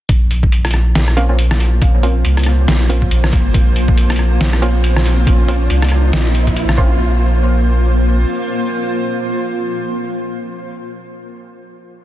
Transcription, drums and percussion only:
0.09 kick loud
0.09 closed hi-hat medium
0.31 closed hi-hat medium
0.43 kick loud
0.52 closed hi-hat medium
0.65 cross-stick medium
0.65 closed hi-hat soft
0.67 closed hi-hat medium
0.71 cross-stick medium
0.71 closed hi-hat medium
0.95 snare loud
0.95 closed hi-hat medium
1.08 cross-stick medium
1.17 closed hi-hat medium
1.39 closed hi-hat medium
1.51 cross-stick medium
1.51 snare soft
1.60 closed hi-hat medium
1.82 kick loud
1.82 closed hi-hat medium
2.03 closed hi-hat medium
2.25 closed hi-hat medium
2.37 cross-stick medium
2.37 closed hi-hat medium
2.39 closed hi-hat medium
2.43 cross-stick soft
2.43 closed hi-hat medium
2.68 snare loud
2.68 closed hi-hat medium
2.90 closed hi-hat medium
3.02 kick medium
3.11 closed hi-hat medium
3.24 cross-stick medium
3.24 snare soft
3.33 kick loud
3.33 closed hi-hat medium
3.54 kick loud
3.54 closed hi-hat medium
3.76 closed hi-hat medium
3.88 kick loud
3.98 closed hi-hat medium
4.10 cross-stick medium
4.10 closed hi-hat medium
4.12 closed hi-hat medium
4.16 cross-stick soft
4.16 closed hi-hat medium
4.41 snare loud
4.41 closed hi-hat medium
4.53 cross-stick medium
4.62 closed hi-hat medium
4.84 closed hi-hat medium
4.96 cross-stick medium
4.96 snare soft
5.06 closed hi-hat medium
5.27 kick loud
5.27 closed hi-hat medium
5.49 closed hi-hat medium
5.70 closed hi-hat medium
5.82 cross-stick medium
5.82 closed hi-hat soft
5.84 closed hi-hat medium
5.89 cross-stick medium
5.89 closed hi-hat medium
6.13 snare loud
6.13 closed hi-hat medium
6.35 closed hi-hat medium
6.47 kick medium
6.47 closed hi-hat soft
6.56 closed hi-hat medium
6.69 cross-stick medium
6.69 snare soft
6.78 kick loud

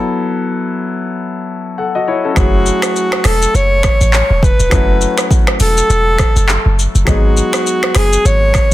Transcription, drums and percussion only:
2.36 finger snap medium
2.36 kick loud
2.36 cross-stick loud
2.36 shaker medium
2.66 shaker medium
2.82 finger snap medium
2.82 cross-stick medium
2.82 shaker medium
2.96 shaker medium
3.12 finger snap medium
3.12 cross-stick loud
3.24 finger snap medium
3.24 cross-stick medium
3.24 open hi-hat medium
3.24 shaker medium
3.42 shaker medium
3.55 shaker medium
3.83 finger snap medium
3.83 kick medium
3.83 cross-stick loud
3.83 shaker medium
4.01 shaker medium
4.13 clap loud
4.13 shaker medium
4.43 kick loud
4.43 shaker medium
4.60 shaker medium
4.71 finger snap medium
4.71 kick loud
4.71 cross-stick medium
4.71 shaker medium
5.01 shaker medium
5.18 finger snap medium
5.18 cross-stick medium
5.18 shaker medium
5.31 kick medium
5.31 shaker medium
5.47 finger snap medium
5.47 cross-stick loud
5.60 open hi-hat medium
5.60 shaker medium
5.77 shaker medium
5.90 shaker medium
6.18 finger snap medium
6.18 kick medium
6.18 cross-stick loud
6.18 shaker medium
6.36 shaker medium
6.49 clap loud
6.49 shaker medium
6.79 shaker medium
6.95 shaker medium
7.07 finger snap medium
7.07 kick loud
7.07 cross-stick loud
7.07 shaker medium
7.37 shaker medium
7.53 finger snap medium
7.53 cross-stick loud
7.53 shaker medium
7.67 shaker medium
7.83 finger snap medium
7.83 cross-stick loud
7.95 finger snap medium
7.95 cross-stick medium
7.95 open hi-hat medium
7.95 shaker medium
8.13 shaker medium
8.25 shaker medium
8.54 finger snap medium
8.54 kick medium
8.54 cross-stick medium
8.54 shaker medium

